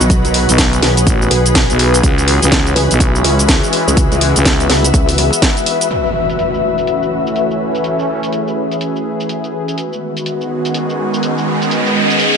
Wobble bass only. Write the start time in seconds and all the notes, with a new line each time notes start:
0.01 B1
0.25 B1
0.83 B1
1.31 B1
2.76 C#2
3.25 C#2
3.88 C#2
4.12 C#2
4.70 C#2
4.94 C#2